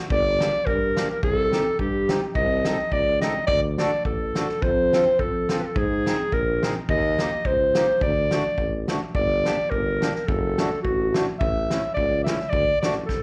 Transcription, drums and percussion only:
0.10 kick medium
0.40 snare medium
0.67 kick medium
0.97 snare medium
1.23 kick medium
1.52 snare medium
1.79 kick soft
2.09 snare loud
2.35 kick medium
2.65 snare medium
2.92 kick medium
3.21 snare medium
3.48 kick medium
3.78 snare medium
4.05 kick medium
4.35 snare medium
4.49 snare soft
4.62 kick medium
4.93 snare medium
5.19 kick soft
5.49 snare medium
5.76 kick medium
6.06 snare medium
6.32 kick medium
6.63 snare medium
6.89 kick medium
7.19 snare medium
7.45 kick medium
7.75 snare medium
8.01 kick medium
8.31 snare medium
8.58 kick soft
8.88 snare medium
9.15 kick medium
9.45 snare medium
9.72 kick soft
10.02 snare medium
10.16 snare soft
10.28 kick medium
10.58 snare medium
10.85 kick soft
11.14 snare medium
11.41 kick medium
11.71 snare medium
11.97 kick soft
12.26 snare medium
12.40 snare soft
12.53 kick medium
12.83 snare medium
13.09 kick soft
13.09 snare soft

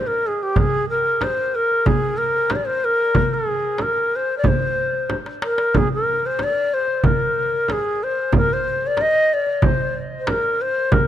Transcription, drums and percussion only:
0.56 frame drum medium
0.56 darbuka dum medium
1.21 darbuka tek medium
1.21 frame drum medium
1.38 darbuka ka soft
1.72 darbuka ka soft
1.86 darbuka dum medium
1.86 frame drum medium
2.50 darbuka tek medium
2.50 frame drum medium
3.15 frame drum medium
3.15 darbuka dum medium
3.31 darbuka ka soft
3.47 darbuka ka soft
3.78 darbuka tek medium
3.78 frame drum medium
3.97 darbuka ka soft
4.12 darbuka ka soft
4.44 darbuka dum medium
4.44 frame drum medium
4.77 darbuka ka soft
5.10 darbuka tek medium
5.10 frame drum medium
5.26 darbuka ka medium
5.42 darbuka tek medium
5.58 darbuka ka medium
5.74 frame drum loud
5.74 darbuka dum medium
6.39 darbuka tek medium
6.39 frame drum medium
6.55 darbuka ka soft
6.88 darbuka ka soft
7.04 darbuka dum medium
7.04 frame drum loud
7.68 darbuka tek medium
7.68 frame drum medium
8.33 darbuka dum medium
8.33 frame drum loud
8.97 darbuka tek medium
8.97 frame drum medium
9.15 darbuka ka soft
9.46 darbuka ka soft
9.62 darbuka dum medium
9.62 frame drum loud
10.27 darbuka tek medium
10.27 frame drum medium
10.92 darbuka dum medium
10.92 frame drum loud

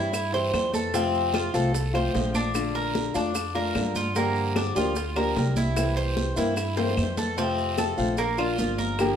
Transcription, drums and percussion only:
0.13 high bongo medium
0.13 high conga soft
0.13 long guiro medium
0.13 claves medium
0.13 maracas medium
0.34 high bongo soft
0.34 high conga soft
0.34 maracas soft
0.54 high bongo medium
0.54 low bongo medium
0.54 high conga medium
0.54 short guiro medium
0.54 claves medium
0.54 maracas soft
0.74 high bongo soft
0.74 high conga medium
0.74 short guiro medium
0.74 maracas medium
0.94 high bongo medium
0.94 high conga soft
0.94 long guiro medium
0.94 maracas medium
1.14 high conga soft
1.14 maracas soft
1.34 high bongo medium
1.34 high conga medium
1.34 short guiro medium
1.34 claves medium
1.34 maracas soft
1.54 high conga soft
1.54 short guiro medium
1.54 maracas medium
1.74 high bongo medium
1.74 high conga soft
1.74 long guiro medium
1.74 maracas medium
1.95 high conga soft
1.95 claves medium
1.95 maracas soft
2.14 high bongo medium
2.14 low bongo medium
2.14 high conga medium
2.14 short guiro medium
2.14 maracas soft
2.35 high conga medium
2.35 short guiro medium
2.35 maracas medium
2.55 high bongo medium
2.55 high conga soft
2.55 long guiro medium
2.55 claves medium
2.55 maracas medium
2.75 high bongo soft
2.75 high conga soft
2.75 maracas soft
2.95 high bongo medium
2.95 high conga medium
2.95 short guiro medium
2.95 maracas soft
3.15 short guiro medium
3.15 maracas medium
3.35 high bongo medium
3.35 high conga soft
3.35 long guiro medium
3.35 claves medium
3.35 maracas medium
3.55 high bongo soft
3.55 high conga soft
3.55 maracas soft
3.75 high bongo medium
3.75 low bongo medium
3.75 high conga medium
3.75 short guiro medium
3.75 claves medium
3.75 maracas soft
3.95 high bongo soft
3.95 high conga medium
3.95 short guiro medium
3.95 maracas medium
4.16 high bongo medium
4.16 high conga soft
4.16 long guiro medium
4.16 maracas medium
4.36 high conga soft
4.36 maracas soft
4.56 high bongo medium
4.56 high conga medium
4.56 short guiro medium
4.56 claves medium
4.56 maracas soft
4.76 high conga soft
4.76 short guiro medium
4.76 maracas medium
4.96 high bongo medium
4.96 high conga soft
4.96 long guiro medium
4.96 maracas medium
5.16 high conga soft
5.16 claves medium
5.16 maracas soft
5.36 high bongo medium
5.36 low bongo medium
5.36 high conga medium
5.36 short guiro medium
5.36 maracas soft
5.56 high conga medium
5.56 short guiro medium
5.56 maracas medium
5.77 high bongo medium
5.77 long guiro medium
5.77 claves medium
5.77 maracas medium
5.97 high bongo soft
5.97 high conga soft
5.97 maracas soft
6.17 high bongo medium
6.17 high conga medium
6.17 short guiro medium
6.17 maracas soft
6.37 short guiro medium
6.37 maracas medium
6.57 high bongo medium
6.57 high conga soft
6.57 long guiro medium
6.57 claves medium
6.57 maracas medium
6.77 high bongo medium
6.77 high conga soft
6.77 maracas soft
6.91 high bongo medium
6.97 high conga medium
6.97 short guiro medium
6.97 claves medium
6.97 maracas soft
7.04 low bongo medium
7.17 low bongo medium
7.17 high conga medium
7.17 short guiro medium
7.17 maracas medium
7.38 high bongo medium
7.38 high conga soft
7.38 long guiro medium
7.38 maracas medium
7.58 high bongo soft
7.58 high conga soft
7.58 maracas soft
7.78 high bongo medium
7.78 high conga medium
7.78 short guiro medium
7.78 claves medium
7.78 maracas medium
7.98 high bongo soft
7.98 high conga soft
7.98 short guiro medium
7.98 maracas soft
8.17 high bongo medium
8.17 high conga soft
8.17 long guiro medium
8.17 maracas medium
8.38 high bongo soft
8.38 high conga soft
8.38 claves medium
8.38 maracas soft
8.58 high bongo soft
8.58 low bongo medium
8.58 high conga medium
8.58 short guiro medium
8.58 maracas medium
8.79 high conga medium
8.79 short guiro medium
8.79 maracas soft
8.99 high bongo medium
8.99 high conga soft
8.99 long guiro medium
8.99 claves medium
8.99 maracas medium

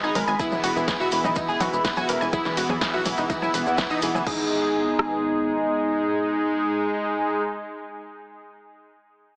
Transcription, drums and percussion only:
0.03 maracas soft
0.15 open hi-hat loud
0.15 low conga loud
0.15 maracas medium
0.27 maracas soft
0.39 kick loud
0.39 ride medium
0.39 maracas medium
0.52 low conga loud
0.52 maracas soft
0.64 open hi-hat loud
0.64 maracas medium
0.77 maracas soft
0.88 kick loud
0.88 snare loud
0.88 ride medium
0.88 low conga loud
0.88 maracas medium
1.01 maracas soft
1.12 open hi-hat loud
1.12 maracas medium
1.24 low conga loud
1.24 maracas soft
1.35 kick loud
1.35 ride medium
1.35 maracas medium
1.49 maracas soft
1.60 snare soft
1.60 open hi-hat loud
1.60 low conga medium
1.60 maracas loud
1.73 maracas soft
1.85 kick loud
1.85 snare loud
1.85 ride medium
1.85 maracas soft
1.97 low conga loud
1.97 maracas soft
2.09 open hi-hat loud
2.09 maracas medium
2.21 maracas soft
2.33 kick loud
2.33 ride medium
2.33 low conga medium
2.33 maracas soft
2.45 snare soft
2.45 maracas soft
2.57 open hi-hat loud
2.57 maracas loud
2.69 low conga loud
2.69 maracas soft
2.81 kick loud
2.81 snare loud
2.81 ride medium
2.81 maracas medium
2.93 maracas soft
3.05 open hi-hat loud
3.05 low conga medium
3.05 maracas medium
3.17 maracas soft
3.30 kick loud
3.30 ride medium
3.30 maracas medium
3.42 low conga medium
3.42 maracas soft
3.54 open hi-hat loud
3.54 maracas medium
3.66 maracas soft
3.78 kick loud
3.78 snare loud
3.78 ride medium
3.78 low conga medium
3.78 maracas soft
3.90 maracas soft
4.02 open hi-hat loud
4.02 maracas loud
4.15 low conga loud
4.15 maracas soft
4.27 kick loud
4.27 crash medium
4.99 cross-stick medium

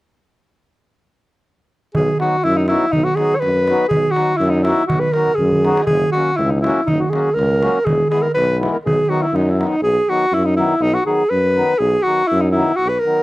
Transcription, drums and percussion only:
1.95 darbuka dum medium
2.08 darbuka tek soft
2.20 darbuka tek medium
2.32 darbuka tek soft
2.44 darbuka tek soft
2.68 darbuka tek medium
2.93 darbuka dum medium
3.06 darbuka tek soft
3.17 darbuka tek medium
3.32 darbuka tek soft
3.42 darbuka tek soft
3.57 darbuka tek soft
3.68 darbuka tek medium
3.91 darbuka dum medium
4.05 darbuka tek soft
4.16 darbuka tek medium
4.30 darbuka tek soft
4.41 darbuka tek soft
4.54 darbuka tek soft
4.65 darbuka tek medium
4.90 darbuka dum medium
5.02 darbuka tek soft
5.14 darbuka tek medium
5.28 darbuka dum soft
5.38 darbuka dum soft
5.52 darbuka dum soft
5.65 darbuka tek medium
5.77 darbuka tek medium
5.87 darbuka dum medium
6.02 darbuka tek soft
6.15 darbuka tek medium
6.27 darbuka tek soft
6.38 darbuka tek soft
6.53 darbuka tek soft
6.64 darbuka tek medium
6.88 darbuka dum medium
7.02 darbuka tek soft
7.13 darbuka tek medium
7.26 darbuka tek soft
7.39 darbuka tek medium
7.52 darbuka tek soft
7.63 darbuka tek medium
7.87 darbuka dum medium
8.01 darbuka tek soft
8.12 darbuka tek medium
8.25 darbuka tek soft
8.38 darbuka tek medium
8.51 darbuka tek soft
8.63 darbuka tek medium
8.87 darbuka dum medium
9.00 darbuka tek soft
9.24 darbuka tek soft
9.36 darbuka tek soft
9.61 darbuka tek medium

